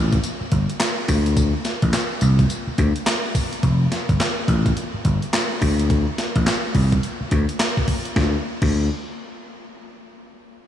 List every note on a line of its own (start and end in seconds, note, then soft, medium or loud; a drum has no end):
0.00 0.17 A1 loud
0.12 kick loud
0.12 closed hi-hat medium
0.23 closed hi-hat medium
0.23 tambourine medium
0.41 muted slap bass stroke soft
0.52 0.65 G1 medium
0.52 kick medium
0.52 closed hi-hat medium
0.70 closed hi-hat medium
0.80 snare loud
0.80 clap loud
0.80 closed hi-hat medium
0.80 tambourine medium
1.08 1.52 D2 loud
1.08 kick medium
1.08 open hi-hat medium
1.08 tambourine medium
1.26 closed hi-hat medium
1.37 kick loud
1.37 closed hi-hat medium
1.37 tambourine medium
1.65 snare medium
1.65 closed hi-hat medium
1.65 tambourine medium
1.82 1.91 A1 medium
1.82 kick loud
1.82 closed hi-hat medium
1.93 snare loud
1.93 clap medium
1.93 closed hi-hat medium
1.93 tambourine loud
2.21 2.43 C2 loud
2.21 closed hi-hat medium
2.21 tambourine medium
2.39 kick loud
2.39 closed hi-hat medium
2.50 closed hi-hat medium
2.50 tambourine medium
2.67 muted slap bass stroke medium
2.78 2.92 D2 medium
2.78 kick medium
2.78 closed hi-hat medium
2.96 closed hi-hat medium
3.06 snare loud
3.06 clap medium
3.06 closed hi-hat medium
3.06 tambourine medium
3.35 kick loud
3.35 open hi-hat medium
3.35 tambourine medium
3.53 closed hi-hat medium
3.63 3.85 F1 loud
3.63 kick loud
3.63 closed hi-hat medium
3.92 snare medium
3.92 closed hi-hat medium
4.09 4.17 G1 medium
4.09 kick loud
4.09 closed hi-hat medium
4.20 snare loud
4.20 clap medium
4.20 closed hi-hat medium
4.48 4.70 A1 loud
4.48 kick medium
4.48 closed hi-hat medium
4.66 kick medium
4.66 closed hi-hat soft
4.77 closed hi-hat medium
4.94 muted slap bass stroke soft
5.05 5.18 G1 loud
5.05 kick medium
5.05 closed hi-hat medium
5.22 closed hi-hat medium
5.33 snare loud
5.33 clap medium
5.33 closed hi-hat medium
5.61 6.05 D2 loud
5.61 kick medium
5.61 open hi-hat medium
5.79 closed hi-hat medium
5.90 kick loud
5.90 closed hi-hat medium
6.18 snare medium
6.18 closed hi-hat medium
6.36 6.44 A1 medium
6.36 kick loud
6.36 closed hi-hat medium
6.46 snare loud
6.46 clap medium
6.46 closed hi-hat medium
6.75 6.96 C2 loud
6.75 kick loud
6.75 open hi-hat medium
6.92 kick loud
6.92 closed hi-hat medium
7.03 closed hi-hat medium
7.21 muted slap bass stroke soft
7.31 7.45 D2 loud
7.31 kick medium
7.31 closed hi-hat medium
7.49 closed hi-hat medium
7.60 snare loud
7.60 clap medium
7.60 closed hi-hat medium
7.77 kick medium
7.88 kick medium
7.88 open hi-hat medium
8.05 closed hi-hat medium
8.16 8.34 D2 loud
8.16 kick loud
8.16 snare medium
8.62 8.88 D2 medium
8.62 kick loud
8.62 crash medium